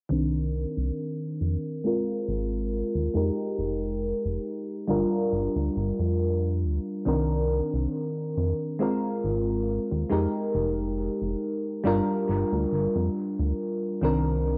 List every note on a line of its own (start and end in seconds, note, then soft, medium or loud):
0.09 0.66 C2 medium
0.09 1.76 D#3 medium
0.09 1.77 C4 medium
0.09 1.77 D4 medium
0.09 1.78 A#4 medium
0.77 0.91 C2 medium
1.41 1.57 F2 medium
1.84 3.07 G#3 medium
1.84 3.07 C4 medium
1.84 3.08 F4 medium
1.84 3.08 A#4 medium
2.28 2.83 G#1 medium
2.95 3.09 D#2 medium
3.14 3.31 F2 medium
3.14 4.81 G#3 medium
3.14 4.81 D#4 medium
3.14 4.81 G4 medium
3.14 4.82 A#4 medium
3.58 4.13 F1 medium
4.25 4.39 F1 medium
4.88 5.05 G1 medium
4.88 6.98 G3 medium
4.88 6.98 D4 medium
4.88 6.99 F4 medium
4.88 6.99 A#4 medium
5.33 5.49 G1 medium
5.56 5.70 D2 medium
5.76 5.92 G1 loud
5.99 6.65 F2 medium
6.64 6.79 D2 loud
7.05 7.62 C2 loud
7.05 8.72 D#3 medium
7.05 8.73 C4 medium
7.05 8.73 D4 medium
7.05 8.73 A#4 medium
7.74 7.87 C2 medium
8.37 8.53 F2 medium
8.79 10.02 G#3 medium
8.79 10.03 C4 medium
8.79 10.03 F4 medium
8.79 10.04 A#4 medium
9.24 9.79 G#1 medium
9.91 10.05 D#2 medium
10.10 10.27 F2 medium
10.10 11.76 G#3 medium
10.10 11.77 D#4 medium
10.10 11.77 G4 medium
10.10 11.78 A#4 medium
10.55 11.09 F1 medium
11.22 11.35 F1 medium
11.83 12.01 G1 medium
11.83 13.94 G3 medium
11.83 13.94 D4 medium
11.83 13.95 F4 medium
11.83 13.95 A#4 loud
12.29 12.45 G1 medium
12.52 12.66 D2 loud
12.72 12.88 G1 loud
12.95 13.09 F2 loud
13.39 13.53 D2 loud
14.01 14.57 C2 medium
14.01 14.58 D#3 medium
14.01 14.58 C4 medium
14.01 14.58 D4 medium
14.01 14.58 A#4 medium